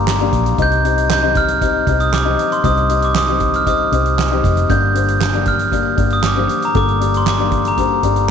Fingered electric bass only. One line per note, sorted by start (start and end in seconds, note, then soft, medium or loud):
0.00 0.29 G1 medium
0.33 0.57 A#1 medium
0.58 1.83 C2 medium
1.87 2.35 C2 medium
2.64 3.88 C2 medium
3.92 4.40 C2 medium
4.44 4.68 F1 medium
4.70 5.94 G1 medium
5.98 6.46 G1 medium
6.75 7.99 G1 medium
8.03 8.31 G1 medium